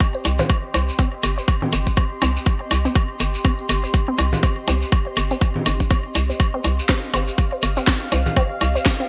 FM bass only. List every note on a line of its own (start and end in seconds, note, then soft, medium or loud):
0.25 0.41 C2 medium
0.74 0.91 C2 medium
1.23 1.40 G1 medium
1.73 1.89 G1 medium
2.22 2.38 C2 loud
2.71 2.87 C2 loud
3.20 3.36 G1 medium
3.69 3.86 G1 medium
4.18 4.35 C2 loud
4.68 4.84 C2 loud
5.17 5.33 G1 medium
5.66 5.82 G1 medium
6.15 6.32 C2 medium
6.64 6.81 C2 loud
7.14 7.30 G1 medium
7.63 7.79 G1 medium
8.12 8.28 C2 loud
8.61 8.77 C2 loud